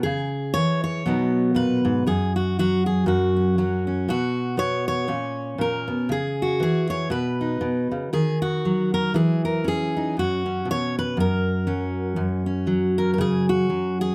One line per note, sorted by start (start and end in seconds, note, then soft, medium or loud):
0.03 0.55 C#3 medium
0.03 1.04 G#4 medium
0.54 1.06 E3 medium
0.54 0.82 C#5 loud
0.84 1.55 C#5 medium
1.06 2.06 B2 medium
1.06 2.10 F#3 soft
1.06 2.04 B3 soft
1.06 2.05 D#4 soft
1.55 1.84 A#2 medium
1.55 2.06 B4 medium
1.85 2.06 G#2 medium
2.07 3.05 F#2 medium
2.07 2.35 G#4 medium
2.36 2.57 F#4 medium
2.59 3.58 F#3 medium
2.59 2.86 F#4 medium
2.86 3.07 G#4 medium
3.06 4.07 F#2 medium
3.06 4.08 F#4 medium
3.37 3.58 C#4 soft
3.58 4.05 F#3 medium
3.58 3.86 C#4 soft
3.87 4.08 C#4 soft
4.08 5.09 B2 medium
4.08 4.58 F#4 medium
4.57 5.06 B3 medium
4.57 4.87 C#5 loud
4.88 5.60 C#5 loud
5.08 5.57 A#2 medium
5.08 6.10 C#4 soft
5.58 5.88 A#2 medium
5.58 6.11 A#4 medium
5.88 6.10 B2 medium
6.09 6.60 C#3 medium
6.09 6.61 G#4 medium
6.42 6.90 F#4 medium
6.60 7.11 E3 medium
6.60 7.12 G#4 loud
6.90 7.11 C#5 medium
7.10 7.60 B2 medium
7.10 8.13 B4 medium
7.41 8.10 D#4 soft
7.61 7.90 B2 medium
7.92 8.12 C#3 medium
8.13 9.11 D#3 medium
8.13 8.41 G#4 medium
8.42 8.92 F#4 medium
8.65 9.12 F#3 medium
8.94 9.15 A#4 medium
9.14 10.15 E3 medium
9.14 9.44 G#4 medium
9.45 9.65 A#4 medium
9.64 10.45 C#4 medium
9.64 10.17 G#4 loud
9.96 10.14 D#4 soft
10.17 10.67 F#2 medium
10.17 10.68 F#4 medium
10.46 11.15 C#4 soft
10.65 11.16 B2 medium
10.71 10.97 C#5 loud
10.99 11.18 B4 medium
11.17 12.15 F#2 medium
11.17 12.20 A#4 medium
11.67 12.15 F#3 medium
11.67 12.45 C#4 soft
12.16 14.15 F#2 medium
12.46 14.15 C#4 soft
12.67 13.68 F#3 medium
12.98 13.12 A#4 medium
13.14 13.19 A#4 medium
13.18 13.69 C#3 medium
13.18 13.49 G#4 loud
13.49 13.99 F#4 medium
13.70 14.15 F#3 medium
14.01 14.15 G#4 medium